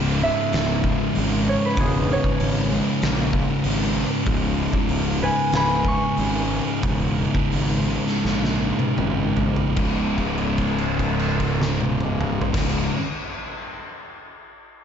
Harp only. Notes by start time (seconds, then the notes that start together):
0.23 E5
1.49 C#5
1.65 B4
1.80 G#4
2.13 C#5
5.22 B4 G#5
5.55 G#5 B5
5.88 C#6